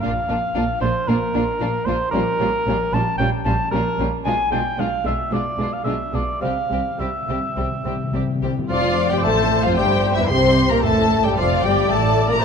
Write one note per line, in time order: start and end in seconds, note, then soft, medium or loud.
0.01 0.10 A#1 medium
0.01 0.10 A#2 medium
0.01 0.10 A#3 soft
0.01 0.10 D4 medium
0.01 0.11 F4 medium
0.01 0.79 F5 medium
0.28 0.36 A#1 medium
0.28 0.36 A#2 medium
0.28 0.36 A#3 soft
0.28 0.37 D4 medium
0.28 0.38 F4 soft
0.55 0.63 A#1 medium
0.55 0.63 A#2 medium
0.55 0.64 A#3 medium
0.55 0.63 D4 medium
0.55 0.63 F4 medium
0.81 0.89 A#1 medium
0.81 0.89 A#2 medium
0.81 0.92 A#3 soft
0.81 0.89 D4 soft
0.81 0.90 F4 soft
0.81 1.09 C5 medium
1.08 1.16 A#1 medium
1.08 1.16 A#2 medium
1.08 1.16 A#3 medium
1.08 1.16 D4 medium
1.08 1.17 F4 medium
1.08 1.87 A#4 medium
1.34 1.42 A#1 medium
1.34 1.42 A#2 medium
1.34 1.42 A#3 medium
1.34 1.42 D4 medium
1.34 1.43 F4 medium
1.60 1.69 A#1 medium
1.60 1.68 A#2 medium
1.60 1.69 A#3 medium
1.60 1.69 D4 medium
1.60 1.69 F4 medium
1.85 1.94 A#1 medium
1.85 1.94 A#2 medium
1.85 1.94 A#3 medium
1.85 1.95 D4 soft
1.85 1.96 F4 medium
1.85 2.11 C5 medium
2.11 2.21 A#1 medium
2.11 2.20 A#2 medium
2.11 2.21 G3 medium
2.11 2.21 C#4 medium
2.11 2.22 F4 medium
2.11 2.95 A#4 medium
2.39 2.48 A#1 medium
2.39 2.47 A#2 medium
2.39 2.48 G3 medium
2.39 2.48 C#4 medium
2.39 2.49 F4 medium
2.65 2.74 A#1 medium
2.65 2.73 A#2 medium
2.65 2.75 G3 medium
2.65 2.76 C#4 medium
2.65 2.77 F4 medium
2.92 3.00 A#1 medium
2.92 3.00 A#2 medium
2.92 3.03 G3 soft
2.92 3.01 C#4 soft
2.92 3.03 F4 soft
2.92 3.17 A5 medium
3.18 3.27 A#1 medium
3.18 3.27 A#2 medium
3.18 3.27 G3 medium
3.18 3.27 C#4 medium
3.18 3.28 F4 soft
3.18 3.30 G5 medium
3.45 3.53 A#1 medium
3.45 3.53 A#2 medium
3.45 3.55 G3 medium
3.45 3.53 C#4 medium
3.45 3.54 F4 medium
3.45 3.71 A5 medium
3.71 3.79 A#1 medium
3.71 3.81 A#2 medium
3.71 3.80 G3 medium
3.71 3.81 C#4 soft
3.71 3.83 F4 medium
3.71 4.05 A#4 medium
3.98 4.06 A#1 medium
3.98 4.07 A#2 medium
3.98 4.08 G3 soft
3.98 4.07 C#4 soft
3.98 4.08 F4 soft
4.24 4.33 B1 medium
4.24 4.33 B2 medium
4.24 4.34 G#3 medium
4.24 4.33 D4 medium
4.24 4.35 F4 medium
4.24 4.49 G#5 medium
4.51 4.59 B1 medium
4.51 4.60 B2 soft
4.51 4.59 G#3 soft
4.51 4.60 D4 medium
4.51 4.62 F4 soft
4.51 4.81 G5 medium
4.78 4.86 B1 medium
4.78 4.86 B2 medium
4.78 4.86 G#3 soft
4.78 4.87 D4 soft
4.78 4.88 F4 medium
4.78 5.08 F5 medium
5.04 5.13 B1 medium
5.04 5.13 B2 medium
5.04 5.12 G#3 soft
5.04 5.13 D4 soft
5.04 5.15 F4 soft
5.04 5.34 E5 medium
5.31 5.39 B1 medium
5.31 5.39 B2 medium
5.31 5.39 G#3 medium
5.31 5.41 D4 soft
5.31 5.42 F4 soft
5.31 5.74 D5 medium
5.57 5.65 B1 soft
5.57 5.65 B2 medium
5.57 5.67 G#3 soft
5.57 5.67 D4 soft
5.57 5.69 F4 soft
5.73 5.83 F5 medium
5.84 5.92 B1 soft
5.84 5.93 B2 medium
5.84 5.92 G#3 soft
5.84 5.94 D4 soft
5.84 5.96 F4 soft
5.84 6.16 E5 medium
6.13 6.21 B1 medium
6.13 6.21 B2 soft
6.13 6.22 G#3 soft
6.13 6.21 D4 soft
6.13 6.23 F4 soft
6.13 6.41 D5 medium
6.41 6.50 C2 medium
6.41 6.49 C3 soft
6.41 6.49 G3 soft
6.41 6.50 C4 medium
6.41 6.53 G4 soft
6.41 7.01 F5 medium
6.50 6.57 C3 soft
6.58 6.65 C3 soft
6.66 6.73 C3 soft
6.66 6.78 G3 soft
6.70 6.79 C2 soft
6.70 6.78 C3 soft
6.70 6.81 C3 soft
6.70 6.80 C4 soft
6.70 6.79 G4 soft
6.82 6.89 C3 soft
6.90 6.96 C3 soft
6.98 7.07 C2 soft
6.98 7.05 C3 soft
6.98 7.07 C3 soft
6.98 7.06 G3 soft
6.98 7.08 C4 soft
6.98 7.08 G4 soft
6.98 8.42 E5 medium
7.14 7.21 C3 soft
7.22 7.29 C3 soft
7.28 7.36 C2 soft
7.28 7.36 C3 soft
7.28 7.37 G3 soft
7.28 7.37 C4 soft
7.28 7.37 G4 soft
7.40 7.46 C3 soft
7.47 7.54 C3 soft
7.56 7.65 C2 soft
7.56 7.62 C3 soft
7.56 7.64 C3 soft
7.56 7.64 G3 soft
7.56 7.64 C4 soft
7.56 7.66 G4 soft
7.63 7.70 C3 soft
7.71 7.79 C3 soft
7.80 7.87 C3 medium
7.85 7.93 C2 soft
7.85 7.93 C3 soft
7.85 7.95 C3 soft
7.85 7.93 G3 soft
7.85 7.93 C4 soft
7.85 7.94 G4 soft
7.96 8.02 C3 medium
8.04 8.10 C3 medium
8.11 8.22 C2 soft
8.11 8.18 C3 medium
8.11 8.21 C3 soft
8.11 8.21 G3 soft
8.11 8.21 C4 soft
8.11 8.22 G4 soft
8.19 8.26 C3 medium
8.27 8.34 C3 medium
8.35 8.42 C3 medium
8.42 8.50 C2 soft
8.42 8.51 C3 soft
8.42 8.50 C3 medium
8.42 8.51 G3 soft
8.42 8.52 C4 soft
8.42 8.51 G4 soft
8.51 8.58 C3 medium
8.59 8.66 C3 medium
8.68 9.07 F1 medium
8.68 9.46 F2 medium
8.68 9.07 F2 medium
8.68 9.12 F3 medium
8.68 9.07 F3 medium
8.68 9.11 F4 medium
8.68 9.08 F4 medium
8.68 9.20 D5 medium
8.68 9.07 F5 medium
9.10 9.24 G2 medium
9.10 9.16 G3 medium
9.10 9.23 G3 medium
9.10 9.25 G4 medium
9.10 9.16 G4 medium
9.10 9.23 G5 medium
9.10 9.24 G5 medium
9.23 9.64 A1 medium
9.23 9.64 A2 medium
9.23 9.63 A3 medium
9.23 9.65 A4 medium
9.23 9.63 A4 medium
9.23 10.29 C5 medium
9.23 9.63 A5 medium
9.23 9.64 A5 medium
9.62 9.77 F2 medium
9.62 9.79 F3 medium
9.62 9.78 F3 medium
9.62 9.76 F4 medium
9.62 9.78 F4 medium
9.62 9.76 F5 medium
9.62 9.77 F5 medium
9.76 10.16 G1 medium
9.76 10.16 G2 medium
9.76 10.19 G3 medium
9.76 10.16 G3 medium
9.76 10.16 G4 medium
9.76 10.17 G4 medium
9.76 10.15 G5 medium
9.76 10.16 G5 medium
10.14 10.30 E2 medium
10.14 10.30 E3 medium
10.14 10.30 E3 soft
10.14 10.31 E4 medium
10.14 10.22 E4 soft
10.14 10.28 E5 medium
10.19 10.30 E5 medium
10.29 10.69 C2 medium
10.29 10.69 C3 medium
10.29 10.70 C4 medium
10.29 10.83 G4 medium
10.29 10.71 C5 medium
10.29 10.70 C5 medium
10.29 10.68 C6 medium
10.29 10.70 C6 medium
10.70 10.83 A#2 medium
10.70 10.84 A#3 medium
10.70 10.77 A#3 medium
10.70 10.83 A#4 medium
10.70 10.83 A#5 medium
10.82 11.23 A1 medium
10.82 11.59 F2 medium
10.82 11.23 A2 medium
10.82 11.23 A3 medium
10.82 11.27 A3 medium
10.82 11.37 A4 medium
10.82 11.26 A4 medium
10.82 11.23 A4 medium
10.82 11.23 A5 medium
11.24 11.37 G2 medium
11.24 11.37 G3 medium
11.24 11.36 G4 medium
11.24 11.37 G4 medium
11.24 11.37 G5 medium
11.36 11.63 F1 medium
11.36 11.63 F2 medium
11.36 11.65 F3 medium
11.36 11.64 F3 medium
11.36 11.63 F4 medium
11.36 11.64 F4 medium
11.36 12.41 D5 medium
11.36 11.62 F5 medium
11.36 11.63 F5 medium
11.63 11.89 G1 medium
11.63 11.89 G2 medium
11.63 11.90 G3 medium
11.63 11.93 G4 medium
11.63 11.90 G4 medium
11.63 11.89 G5 medium
11.89 12.28 A1 medium
11.89 12.28 A2 medium
11.89 12.28 A3 medium
11.89 12.29 A3 medium
11.89 12.29 A4 medium
11.89 12.30 A4 medium
11.89 12.29 A5 medium
12.28 12.42 A#2 medium
12.28 12.34 A#3 medium
12.28 12.41 A#4 medium
12.28 12.42 A#4 medium
12.28 12.42 A#5 medium
12.41 12.45 A1 medium
12.41 12.45 A3 medium
12.41 12.45 C5 medium
12.41 12.45 A5 medium